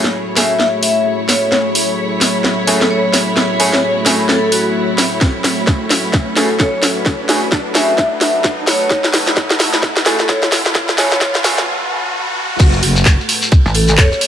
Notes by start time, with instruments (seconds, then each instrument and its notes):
Already playing: string section F#3 A3 E4 C#5, ambient pad A3 F#4 G#4 C#5, riser
0.04 snare
0.36 grand piano A3 C#4 F#4 G#4, vibraphone E5, snare, open hi-hat
0.50 vibraphone E5
0.60 snare
0.83 vibraphone E5, open hi-hat
1.29 vibraphone C#5, snare, open hi-hat
1.43 vibraphone C#5
1.52 snare
1.75 open hi-hat
2.21 snare, open hi-hat
2.44 snare
2.67 grand piano A3 C#4 F#4 G#4, vibraphone A4, open hi-hat
2.81 vibraphone A4, snare
2.91 vibraphone C#5
3.14 snare, open hi-hat
3.37 snare
3.60 grand piano A3 C#4 F#4 G#4, vibraphone C#5, open hi-hat
3.74 vibraphone C#5, snare
4.06 grand piano A3 C#4 F#4 G#4, snare, open hi-hat
4.29 vibraphone A4, snare
4.43 vibraphone A4
4.52 vibraphone F#4, open hi-hat
4.98 snare, open hi-hat
5.21 ambient pad A4 B4, kick, snare
5.44 snare, open hi-hat
5.67 kick, snare
5.90 snare, open hi-hat
6.13 kick, snare
6.37 grand piano A3 C#4 F#4 G#4, vibraphone A4, snare, open hi-hat
6.50 vibraphone A4
6.60 vibraphone C#5, kick, snare
6.83 snare, open hi-hat
7.06 kick, snare
7.29 grand piano A3 C#4 F#4 G#4, snare, open hi-hat
7.52 kick, snare
7.75 grand piano A3 C#4 F#4 G#4, vibraphone E5, snare, open hi-hat
7.89 vibraphone E5
7.98 kick, snare
8.21 vibraphone E5, snare, open hi-hat
8.44 kick, snare
8.67 vibraphone C#5, snare, open hi-hat
8.81 vibraphone C#5
8.90 kick, snare
9.04 snare
9.14 snare, open hi-hat
9.27 snare
9.37 kick, snare
9.51 snare
9.60 snare, open hi-hat
9.74 snare
9.83 kick, snare
9.97 snare
10.06 grand piano A3 C#4 F#4 G#4, vibraphone A4, snare, open hi-hat
10.20 vibraphone A4, snare
10.29 vibraphone C#5, kick, snare
10.43 snare
10.52 snare, open hi-hat
10.66 snare
10.75 kick, snare
10.89 snare
10.98 grand piano A3 C#4 F#4 G#4, vibraphone C#5, snare, open hi-hat
11.12 vibraphone C#5, snare
11.21 kick, snare
11.35 snare
11.44 grand piano A3 C#4 F#4 G#4, snare, open hi-hat
11.58 snare
12.59 fm bass F#1, ambient pad A3 F#4 G#4 C#5, kick, crash, ride, shekere
12.73 shekere
12.83 fm bass F#1, open hi-hat, ride
12.96 shekere
13.05 kick, snare, clap, ride, shekere
13.21 shekere
13.29 open hi-hat, ride
13.42 ride, shekere
13.52 kick, ride, shekere
13.66 wobble bass A1, shekere
13.74 vibraphone A4, open hi-hat, ride
13.88 vibraphone A4, shekere
13.98 vibraphone C#5, kick, snare, clap, ride, shekere
14.11 snare, shekere
14.21 open hi-hat, ride